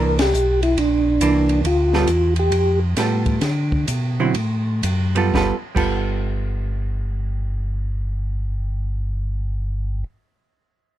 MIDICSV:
0, 0, Header, 1, 5, 480
1, 0, Start_track
1, 0, Tempo, 434783
1, 1822, Time_signature, 4, 2, 24, 8
1, 2784, Tempo, 456969
1, 4704, Tempo, 492611
1, 5664, Tempo, 508044
1, 10998, End_track
2, 0, Start_track
2, 0, Title_t, "Tonewheel organ"
2, 0, Program_c, 0, 16
2, 0, Note_on_c, 0, 70, 87
2, 196, Note_off_c, 0, 70, 0
2, 234, Note_on_c, 0, 67, 95
2, 673, Note_off_c, 0, 67, 0
2, 696, Note_on_c, 0, 64, 83
2, 862, Note_on_c, 0, 62, 82
2, 867, Note_off_c, 0, 64, 0
2, 1777, Note_off_c, 0, 62, 0
2, 1837, Note_on_c, 0, 65, 86
2, 2582, Note_off_c, 0, 65, 0
2, 2643, Note_on_c, 0, 67, 76
2, 3071, Note_off_c, 0, 67, 0
2, 10998, End_track
3, 0, Start_track
3, 0, Title_t, "Hollow-body jazz guitar"
3, 0, Program_c, 1, 26
3, 0, Note_on_c, 1, 52, 61
3, 0, Note_on_c, 1, 58, 60
3, 0, Note_on_c, 1, 62, 66
3, 186, Note_off_c, 1, 52, 0
3, 190, Note_off_c, 1, 62, 0
3, 192, Note_off_c, 1, 58, 0
3, 1341, Note_on_c, 1, 52, 62
3, 1351, Note_on_c, 1, 58, 62
3, 1358, Note_on_c, 1, 62, 68
3, 1820, Note_off_c, 1, 52, 0
3, 1826, Note_off_c, 1, 58, 0
3, 1829, Note_off_c, 1, 62, 0
3, 2146, Note_on_c, 1, 55, 64
3, 2147, Note_on_c, 1, 65, 69
3, 2150, Note_on_c, 1, 59, 66
3, 2150, Note_on_c, 1, 69, 63
3, 2290, Note_off_c, 1, 55, 0
3, 2290, Note_off_c, 1, 65, 0
3, 2292, Note_off_c, 1, 59, 0
3, 2292, Note_off_c, 1, 69, 0
3, 3261, Note_on_c, 1, 55, 47
3, 3262, Note_on_c, 1, 59, 46
3, 3276, Note_on_c, 1, 65, 51
3, 3280, Note_on_c, 1, 69, 51
3, 3731, Note_off_c, 1, 55, 0
3, 3731, Note_off_c, 1, 59, 0
3, 3738, Note_off_c, 1, 65, 0
3, 3740, Note_off_c, 1, 69, 0
3, 4544, Note_on_c, 1, 50, 64
3, 4545, Note_on_c, 1, 54, 60
3, 4546, Note_on_c, 1, 60, 63
3, 4548, Note_on_c, 1, 64, 68
3, 4693, Note_off_c, 1, 50, 0
3, 4694, Note_off_c, 1, 54, 0
3, 4695, Note_off_c, 1, 60, 0
3, 4696, Note_off_c, 1, 64, 0
3, 5486, Note_on_c, 1, 55, 57
3, 5495, Note_on_c, 1, 59, 58
3, 5505, Note_on_c, 1, 65, 69
3, 5507, Note_on_c, 1, 69, 62
3, 5657, Note_off_c, 1, 55, 0
3, 5669, Note_off_c, 1, 59, 0
3, 5669, Note_on_c, 1, 55, 56
3, 5675, Note_off_c, 1, 65, 0
3, 5681, Note_on_c, 1, 59, 61
3, 5687, Note_on_c, 1, 65, 66
3, 5688, Note_off_c, 1, 69, 0
3, 5699, Note_on_c, 1, 69, 66
3, 5856, Note_off_c, 1, 55, 0
3, 5862, Note_off_c, 1, 59, 0
3, 5865, Note_off_c, 1, 65, 0
3, 5871, Note_off_c, 1, 69, 0
3, 6054, Note_on_c, 1, 55, 54
3, 6064, Note_on_c, 1, 59, 56
3, 6073, Note_on_c, 1, 65, 58
3, 6079, Note_on_c, 1, 69, 61
3, 10137, Note_off_c, 1, 55, 0
3, 10146, Note_off_c, 1, 59, 0
3, 10156, Note_off_c, 1, 65, 0
3, 10162, Note_off_c, 1, 69, 0
3, 10998, End_track
4, 0, Start_track
4, 0, Title_t, "Tonewheel organ"
4, 0, Program_c, 2, 16
4, 0, Note_on_c, 2, 36, 76
4, 366, Note_off_c, 2, 36, 0
4, 372, Note_on_c, 2, 35, 85
4, 843, Note_off_c, 2, 35, 0
4, 849, Note_on_c, 2, 34, 77
4, 1321, Note_off_c, 2, 34, 0
4, 1330, Note_on_c, 2, 36, 84
4, 1801, Note_off_c, 2, 36, 0
4, 1812, Note_on_c, 2, 38, 80
4, 2282, Note_off_c, 2, 38, 0
4, 2294, Note_on_c, 2, 40, 82
4, 2767, Note_off_c, 2, 40, 0
4, 2771, Note_on_c, 2, 41, 80
4, 3231, Note_off_c, 2, 41, 0
4, 3252, Note_on_c, 2, 45, 85
4, 3712, Note_off_c, 2, 45, 0
4, 3719, Note_on_c, 2, 50, 78
4, 4192, Note_off_c, 2, 50, 0
4, 4210, Note_on_c, 2, 47, 83
4, 4691, Note_off_c, 2, 47, 0
4, 4705, Note_on_c, 2, 45, 73
4, 5164, Note_off_c, 2, 45, 0
4, 5175, Note_on_c, 2, 42, 82
4, 5649, Note_off_c, 2, 42, 0
4, 5666, Note_on_c, 2, 31, 83
4, 5842, Note_off_c, 2, 31, 0
4, 6067, Note_on_c, 2, 31, 83
4, 10112, Note_off_c, 2, 31, 0
4, 10998, End_track
5, 0, Start_track
5, 0, Title_t, "Drums"
5, 208, Note_on_c, 9, 51, 65
5, 212, Note_on_c, 9, 38, 76
5, 318, Note_off_c, 9, 51, 0
5, 322, Note_off_c, 9, 38, 0
5, 377, Note_on_c, 9, 44, 56
5, 487, Note_off_c, 9, 44, 0
5, 691, Note_on_c, 9, 51, 42
5, 802, Note_off_c, 9, 51, 0
5, 856, Note_on_c, 9, 51, 58
5, 967, Note_off_c, 9, 51, 0
5, 1335, Note_on_c, 9, 44, 60
5, 1335, Note_on_c, 9, 51, 68
5, 1445, Note_off_c, 9, 44, 0
5, 1445, Note_off_c, 9, 51, 0
5, 1647, Note_on_c, 9, 51, 45
5, 1757, Note_off_c, 9, 51, 0
5, 1818, Note_on_c, 9, 51, 59
5, 1929, Note_off_c, 9, 51, 0
5, 2135, Note_on_c, 9, 38, 39
5, 2246, Note_off_c, 9, 38, 0
5, 2290, Note_on_c, 9, 44, 46
5, 2290, Note_on_c, 9, 51, 59
5, 2400, Note_off_c, 9, 44, 0
5, 2400, Note_off_c, 9, 51, 0
5, 2605, Note_on_c, 9, 51, 47
5, 2715, Note_off_c, 9, 51, 0
5, 2779, Note_on_c, 9, 51, 55
5, 2885, Note_off_c, 9, 51, 0
5, 3250, Note_on_c, 9, 44, 53
5, 3250, Note_on_c, 9, 51, 66
5, 3254, Note_on_c, 9, 38, 37
5, 3355, Note_off_c, 9, 44, 0
5, 3355, Note_off_c, 9, 51, 0
5, 3359, Note_off_c, 9, 38, 0
5, 3559, Note_on_c, 9, 51, 44
5, 3562, Note_on_c, 9, 36, 54
5, 3664, Note_off_c, 9, 51, 0
5, 3667, Note_off_c, 9, 36, 0
5, 3720, Note_on_c, 9, 51, 58
5, 3724, Note_on_c, 9, 38, 36
5, 3825, Note_off_c, 9, 51, 0
5, 3829, Note_off_c, 9, 38, 0
5, 4045, Note_on_c, 9, 36, 53
5, 4150, Note_off_c, 9, 36, 0
5, 4206, Note_on_c, 9, 44, 49
5, 4206, Note_on_c, 9, 51, 58
5, 4311, Note_off_c, 9, 44, 0
5, 4311, Note_off_c, 9, 51, 0
5, 4699, Note_on_c, 9, 51, 57
5, 4797, Note_off_c, 9, 51, 0
5, 5173, Note_on_c, 9, 44, 48
5, 5173, Note_on_c, 9, 51, 70
5, 5271, Note_off_c, 9, 44, 0
5, 5271, Note_off_c, 9, 51, 0
5, 5489, Note_on_c, 9, 51, 44
5, 5587, Note_off_c, 9, 51, 0
5, 5668, Note_on_c, 9, 36, 52
5, 5673, Note_on_c, 9, 38, 57
5, 5763, Note_off_c, 9, 36, 0
5, 5767, Note_off_c, 9, 38, 0
5, 6067, Note_on_c, 9, 36, 52
5, 6074, Note_on_c, 9, 49, 56
5, 6162, Note_off_c, 9, 36, 0
5, 6169, Note_off_c, 9, 49, 0
5, 10998, End_track
0, 0, End_of_file